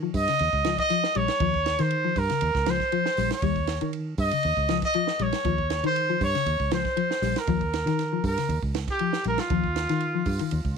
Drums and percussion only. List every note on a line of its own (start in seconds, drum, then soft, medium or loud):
0.14 kick medium
0.14 open hi-hat medium
0.28 snare soft
0.28 ride bell medium
0.39 ride bell medium
0.53 kick medium
0.65 snare medium
0.65 ride bell medium
0.78 kick medium
0.78 snare soft
0.78 ride bell medium
0.90 snare soft
0.90 ride bell medium
1.04 snare medium
1.15 ride bell medium
1.28 snare medium
1.28 ride bell soft
1.40 kick medium
1.40 ride bell medium
1.54 kick medium
1.66 snare medium
1.66 ride bell medium
1.79 snare soft
1.79 ride bell medium
1.91 ride bell medium
2.16 kick medium
2.16 open hi-hat medium
2.30 snare soft
2.30 ride bell medium
2.41 ride bell medium
2.55 kick medium
2.55 snare soft
2.66 snare medium
2.66 ride bell medium
2.80 kick medium
2.80 snare soft
2.92 ride bell medium
3.06 snare medium
3.17 snare soft
3.17 open hi-hat medium
3.31 snare medium
3.31 ride bell soft
3.42 kick medium
3.42 ride bell medium
3.56 kick medium
3.67 snare medium
3.67 ride bell medium
3.81 ride bell soft
3.93 ride bell soft
4.18 kick medium
4.18 open hi-hat medium
4.31 ride bell medium
4.43 ride bell soft
4.57 kick medium
4.69 snare medium
4.69 ride bell medium
4.82 kick medium
4.82 snare soft
4.82 ride bell medium
4.94 ride bell soft
5.07 snare medium
5.19 ride bell medium
5.33 snare medium
5.33 ride bell medium
5.45 kick medium
5.45 ride bell medium
5.58 kick medium
5.70 snare medium
5.70 ride bell medium
5.84 ride bell medium
5.96 ride bell medium
6.21 kick medium
6.21 open hi-hat medium
6.35 snare soft
6.35 ride bell medium
6.46 ride bell medium
6.60 kick medium
6.71 snare medium
6.71 ride bell medium
6.85 kick medium
6.85 snare soft
6.97 ride bell medium
7.11 snare medium
7.22 snare soft
7.22 open hi-hat medium
7.36 snare medium
7.36 ride bell medium
7.47 kick medium
7.47 ride bell medium
7.61 kick medium
7.74 snare medium
7.74 ride bell medium
7.87 snare soft
7.87 ride bell medium
7.99 snare soft
7.99 ride bell medium
8.24 kick medium
8.24 open hi-hat medium
8.38 snare soft
8.38 ride bell medium
8.49 ride bell medium
8.63 kick medium
8.75 snare medium
8.75 ride bell medium
8.88 kick medium
8.88 snare soft
8.88 ride bell soft
8.99 ride bell medium
9.13 snare medium
9.24 ride bell medium
9.38 snare medium
9.38 ride bell soft
9.50 kick medium
9.50 ride bell soft
9.64 kick medium
9.76 snare medium
9.76 ride bell medium
9.89 snare soft
9.89 ride bell medium
10.00 ride bell medium
10.26 kick medium
10.26 open hi-hat medium
10.39 ride bell medium
10.51 ride bell medium
10.65 kick medium